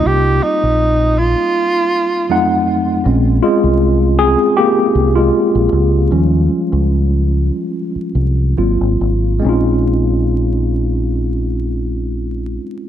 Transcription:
X:1
M:4/4
L:1/16
Q:"Swing 16ths" 1/4=76
K:Bbdor
V:1 name="Tenor saxophone"
G2 E4 F8 z2 | z16 | z16 | z16 |]
V:2 name="Tine electric piano"
[G,B,CEF]12 [F,,_G,=A,CE_g]4 | z2 [A,F]4 [CA]2 [B,G]3 [A,F]4- [A,F]- | [A,F]12 z4 | [A,CDEF]16 |]
V:3 name="Tine electric piano"
z16 | [A,CD]16 | [F,G,D]2 z8 z2 [_G,B,CF]2 z2 | z16 |]
V:4 name="Fingered electric bass" clef=bass
C,,2 z B,,,4 z8 z | B,,,2 z C,,4 z3 C,,2 z B,,, D,,2 | E,,2 z D,,4 z3 C,,2 A,,, A,,, A,,,2 | B,,,16 |]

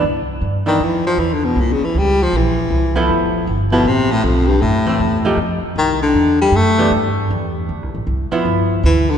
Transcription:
X:1
M:4/4
L:1/8
Q:"Swing" 1/4=157
K:C
V:1 name="Hollow-body jazz guitar"
z3 [E,B,D] z4 | z6 z [F,B,EA]- | [F,B,EA]2 z [F,B,EA] z4 | z [E,A,C] z [F,A,_EG] z4 |
z3 [E,B,DG] z4 | z3 [F,B,E]3 z2 |]
V:2 name="Baritone saxophone" clef=bass
z3 _E, =E, F, (3E, D, B,, | (3_B,, _D, E, G, F, E,4 | z3 B,, C, A,, F,, G,, | A,,4 z2 _E, D,- |
D, G, A,2 z4 | z6 E, D, |]
V:3 name="Upright bass" clef=bass
C,,2 G,,2 F,,2 E,,2 | C,, z _D,,2 _B,,,2 C,,2 | F,,,2 G,,,2 A,,,2 B,,,2 | ^F,,2 E,,2 =F,, z C,,2 |
E,,2 ^F,,2 G,,2 E,,2 | (3D,, C,, A,,, C,, z G,,,2 D,,2 |]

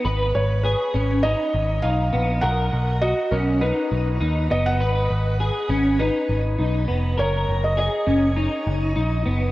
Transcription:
X:1
M:4/4
L:1/16
Q:1/4=101
K:G#dor
V:1 name="Felt piano"
z2 c2 B4 d4 e4 | f4 d2 A2 B6 d f- | f8 B8 | c3 d d8 z4 |]
V:2 name="Clean electric guitar"
B4 G2 C2 D4 D2 B,2 | A4 F2 C2 D4 D2 B,2 | B4 G2 C2 D4 D2 B,2 | A4 G2 C2 D4 D2 B,2 |]
V:3 name="Picked electric bass" clef=bass
G,,,2 G,,,3 z G,,,3 z G,,,2 B,,,2 A,,,2 | B,,,2 B,,,3 z B,,,3 z B,,,2 D,,2 F,,,2 | G,,,2 G,,,3 z G,,,3 z G,,,2 B,,,2 E,,,2 | F,,,2 F,,,3 z F,,,3 z F,,,2 A,,,2 F,,,2 |]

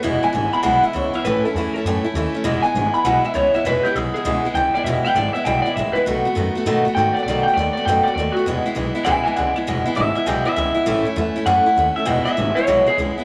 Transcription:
X:1
M:4/4
L:1/8
Q:"Swing" 1/4=199
K:E
V:1 name="Clean electric guitar"
z g2 b f e c e | B A G A2 z3 | z g2 b f e c e | B =G ^G G2 z =g =d |
e =g =d e g d e B | z6 =g =d | =d =g d d g d d F | z4 [eg] [eg] [=df] g |
z2 e e =g e e2- | e2 z2 f3 e | f e2 c2 G z2 |]
V:2 name="Steel-string acoustic guitar"
[E,,B,,E,G,B,E] [E,G,B,E] [E,G,B,E] [E,G,B,E] [E,,B,,E,G,B,E] [E,G,B,E] [E,G,B,E] [E,G,B,E] | [A,,E,A,CE] [A,CE] [E,A,CE] [A,CE] [A,,E,A,CE] [A,CE] [E,A,CE] [A,CE] | [E,,B,,E,G,B,E] [E,G,B,E] [E,G,B,E] [E,G,B,E] [E,,B,,E,G,B,E] [E,G,B,E] [E,G,B,E] [E,G,B,E] | [E,,B,,E,G,B,E] [E,G,B,E] [E,G,B,E] [E,G,B,E] [E,,B,,E,G,B,E] [E,G,B,E] [E,G,B,E] [E,G,B,E] |
[E,,B,,E,G,B,E] [E,G,B,E] [E,G,B,E] [E,G,B,E] [E,,B,,E,G,B,E] [E,G,B,E] [E,G,B,E] [E,G,B,E] | [B,,D,A,B,F] [A,B,F] [D,A,B,F] [A,B,F] [B,,D,A,B,F] [A,B,F] [D,A,B,F] [A,B,F] | [B,,D,A,B,F] [A,B,F] [D,A,B,F] [A,B,F] [B,,D,A,B,F] [A,B,F] [D,A,B,F] [A,B,F] | [E,,B,,E,G,B,E] [E,G,B,E] [E,G,B,E] [E,G,B,E] [E,,B,,E,G,B,E] [E,G,B,E] [E,G,B,E] [E,G,B,E] |
[E,,B,,E,G,B,E] [E,G,B,E] [E,G,B,E] [E,G,B,E] [E,,B,,E,G,B,E] [E,G,B,E] [E,G,B,E] [E,G,B,E] | [A,,E,A,CE] [A,CE] [E,A,CE] [A,CE] [A,,E,A,CE] [A,CE] [E,A,CE] [A,CE] | [E,,B,,E,G,B,E] [E,G,B,E] [E,G,B,E] [E,G,B,E] [E,,B,,E,G,B,E] [E,G,B,E] [E,G,B,E] [E,G,B,E] |]
V:3 name="Upright bass" clef=bass
E,,, z G,,, z B,,, z C,, z | A,,, z E,, z F,, z D,, z | E,,, z G,,, z B,,, z C,, z | E,,, z B,,, z C,, z C,, z |
E,,, z G,,, z B,,, z A,,, z | B,,, z F,, z A,, z G,, z | B,,, z D,, z F,, z D,, z | E,,, z B,,, z C,, z C,, z |
E,,, z G,,, z B,,, z C,, z | A,,, z E,, z F,, z D,, z | E,,, z G,,, z B,,, z C,, z |]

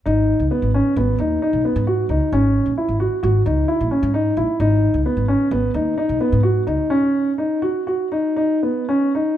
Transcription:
X:1
M:5/4
L:1/16
Q:1/4=132
K:G#m
V:1 name="Grand piano"
D4 B,2 C2 B,2 D2 D2 B,2 F2 D2 | C4 E2 F2 F2 D2 E2 C2 D2 E2 | D4 B,2 C2 B,2 D2 D2 B,2 F2 D2 | C4 D2 F2 F2 D2 D2 B,2 C2 D2 |]
V:2 name="Upright bass" clef=bass
G,,,3 C,, z G,,,2 z G,,,2 D,,2 z B,,, z G,,3 C,, z | G,,,3 A,,, z G,,,2 z G,,,2 C,,2 z A,,, z G,,3 A,,, z | G,,,3 C,, z G,,,2 z G,,,2 D,,2 z B,,, z G,,3 C,, z | z16 z4 |]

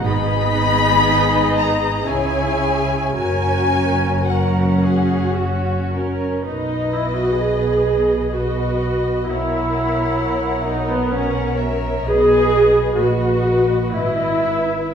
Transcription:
X:1
M:3/4
L:1/16
Q:1/4=62
K:B
V:1 name="Violin section"
b6 a2 g4 | g4 f6 z2 | d8 d4 | f8 f2 e2 |
d4 d4 d2 e2 |]
V:2 name="Violin section"
[Gd]8 [Gc]4 | [Ac]4 A2 G2 F2 A2 | [Bd]8 [Bd]4 | [Ac]8 [Ac]4 |
B4 B4 B4 |]
V:3 name="Viola section"
[B,D]8 [CE]4 | [CF]4 [CF]6 C2 | D2 E F G4 F4 | E6 D B, C2 z2 |
G4 F4 E4 |]
V:4 name="Cello section" clef=bass
G,,8 C,4 | F,,12 | B,,12 | B,,12 |
B,,4 A,,4 G,,4 |]
V:5 name="Double bass section" clef=bass
G,,,8 C,,4 | F,,,12 | B,,,12 | B,,,12 |
B,,,4 A,,,4 G,,,4 |]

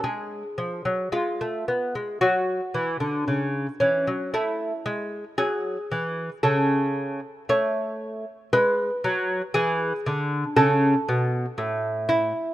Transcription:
X:1
M:4/4
L:1/16
Q:1/4=57
K:A
V:1 name="Lute"
_A4 =F4 ^F6 C2 | E4 G4 A4 c4 | B4 G4 A6 E2 |]
V:2 name="Lute" clef=bass
_A,2 =F, ^F, A, =A, _C _A, F,2 E, D, ^C,2 E, F, | A,2 G,2 F,2 E,2 C,4 A,4 | G,2 F,2 E,2 D,2 C,2 B,,2 A,,4 |]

